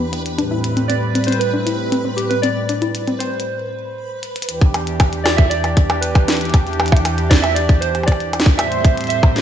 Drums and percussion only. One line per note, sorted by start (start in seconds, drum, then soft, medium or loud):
0.13 closed hi-hat medium
0.26 closed hi-hat soft
0.39 closed hi-hat medium
0.64 closed hi-hat medium
0.77 closed hi-hat soft
0.90 closed hi-hat medium
1.15 closed hi-hat medium
1.24 closed hi-hat medium
1.28 closed hi-hat soft
1.32 closed hi-hat soft
1.41 closed hi-hat medium
1.67 closed hi-hat medium
1.92 closed hi-hat medium
2.18 closed hi-hat medium
2.31 closed hi-hat soft
2.43 closed hi-hat medium
2.69 closed hi-hat medium
2.82 closed hi-hat soft
2.95 closed hi-hat medium
3.08 closed hi-hat soft
3.20 closed hi-hat medium
3.40 closed hi-hat soft
4.23 closed hi-hat medium
4.36 closed hi-hat medium
4.42 closed hi-hat medium
4.49 closed hi-hat medium
4.61 kick loud
4.61 closed hi-hat soft
4.74 closed hi-hat medium
4.74 percussion blips medium
4.87 closed hi-hat soft
5.00 kick loud
5.00 closed hi-hat medium
5.00 percussion blips medium
5.13 closed hi-hat soft
5.26 snare loud
5.26 closed hi-hat soft
5.26 percussion blips medium
5.38 kick loud
5.38 closed hi-hat soft
5.51 closed hi-hat loud
5.64 closed hi-hat soft
5.64 percussion blips medium
5.77 kick loud
5.77 closed hi-hat medium
5.90 closed hi-hat soft
5.90 percussion blips medium
6.03 closed hi-hat loud
6.15 kick loud
6.15 closed hi-hat soft
6.15 percussion blips medium
6.28 snare loud
6.28 closed hi-hat medium
6.32 closed hi-hat medium
6.37 closed hi-hat soft
6.41 closed hi-hat soft
6.45 closed hi-hat soft
6.50 closed hi-hat soft
6.54 kick loud
6.54 closed hi-hat medium
6.54 percussion blips medium
6.67 closed hi-hat soft
6.73 closed hi-hat soft
6.80 closed hi-hat soft
6.80 percussion blips medium
6.86 closed hi-hat soft
6.88 closed hi-hat soft
6.92 kick loud
6.92 percussion blips medium
6.97 closed hi-hat medium
7.05 closed hi-hat loud
7.05 percussion blips medium
7.18 closed hi-hat soft
7.31 kick loud
7.31 snare loud
7.31 closed hi-hat soft
7.44 closed hi-hat soft
7.44 percussion blips medium
7.56 closed hi-hat loud
7.69 kick loud
7.69 closed hi-hat soft
7.82 closed hi-hat medium
7.95 closed hi-hat soft
7.95 percussion blips soft
8.03 percussion blips soft
8.08 kick loud
8.08 closed hi-hat loud
8.12 percussion blips soft
8.20 closed hi-hat soft
8.33 closed hi-hat medium
8.33 percussion blips medium
8.40 snare loud
8.46 kick loud
8.46 closed hi-hat soft
8.59 closed hi-hat medium
8.59 percussion blips medium
8.72 closed hi-hat soft
8.85 kick loud
8.85 closed hi-hat medium
8.97 closed hi-hat soft
9.01 closed hi-hat soft
9.04 closed hi-hat soft
9.07 closed hi-hat soft
9.10 closed hi-hat medium
9.23 kick loud
9.23 percussion blips medium
9.36 snare medium
9.36 closed hi-hat soft
9.38 snare medium